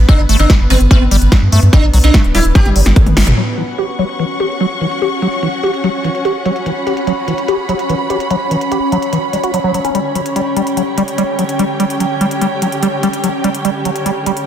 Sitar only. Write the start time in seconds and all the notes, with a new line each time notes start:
0.09 D4
0.39 D4
0.70 B3
0.91 B3
1.73 D4
2.04 D4
2.35 E4
2.55 G4